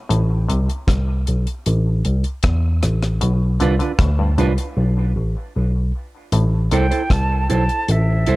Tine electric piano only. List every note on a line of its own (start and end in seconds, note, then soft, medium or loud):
0.11 0.47 A1 loud
0.50 0.68 C2 medium
0.88 1.24 C2 medium
1.28 1.46 B1 medium
1.67 2.02 A1 loud
2.06 2.23 C2 medium
2.44 2.80 E2 medium
2.83 3.19 A1 medium
3.22 3.58 B1 loud
3.61 3.79 C2 medium
3.99 4.35 D2 medium
4.38 4.56 C2 medium
4.77 5.13 B1 loud
5.17 5.34 A1 medium
5.56 5.91 B1 medium
6.33 6.69 A1 loud
6.72 6.90 C2 medium
7.11 7.46 C2 medium
7.50 7.68 B1 medium
7.89 8.25 A1 loud
8.28 8.36 C2 medium